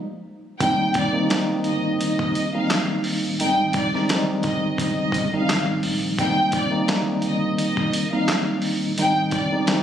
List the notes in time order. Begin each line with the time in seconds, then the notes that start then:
0.60 D#1 D#3 G3 A#3 C4 D#4 G5, kick, closed hi-hat
0.94 D5, kick, closed hi-hat
1.13 D#3 G3 A#3 C4 D#4
1.30 D#3 G3 A#3 C4 D#4, snare, clap, closed hi-hat
1.50 G1
1.64 G1 D#5, closed hi-hat
2.00 D#1 D#5, closed hi-hat
2.19 kick
2.35 closed hi-hat
2.54 D#3 G3 A#3 C4 D#4 F5
2.70 snare, clap, closed hi-hat
3.04 open hi-hat
3.24 D#1
3.40 G#1 D#3 G3 G#3 C4 D#4 G5, closed hi-hat
3.73 D5, kick, closed hi-hat
3.94 D#3 G3 G#3 C4 D#4, snare
4.09 D#3 G3 G#3 C4 D#4, snare, clap, closed hi-hat
4.29 G1
4.43 G1 D#5, kick, closed hi-hat
4.78 D#5, kick, closed hi-hat
5.12 G1, kick, closed hi-hat
5.33 D#3 G3 G#3 C4 D#4 F5
5.49 G#1, snare, clap, closed hi-hat
5.83 A#1, open hi-hat
6.19 D#1 D#3 G3 A#3 C4 D#4 G5, kick, closed hi-hat
6.52 D5, kick, closed hi-hat
6.71 D#3 G3 A#3 C4 D#4
6.88 D#3 G3 A#3 C4 D#4, snare, clap, closed hi-hat
7.08 G1
7.22 G1 D#5, closed hi-hat
7.57 D#1 D#5, closed hi-hat
7.77 kick
7.93 closed hi-hat
8.12 D#3 G3 A#3 C4 D#4 F5
8.28 snare, clap, closed hi-hat
8.62 open hi-hat
8.82 D#1
8.98 G#1 D#3 G3 G#3 C4 D#4 G5, closed hi-hat
9.31 D5, kick, closed hi-hat
9.52 D#3 G3 G#3 C4 D#4
9.67 D#3 G3 G#3 C4 D#4, snare, clap, closed hi-hat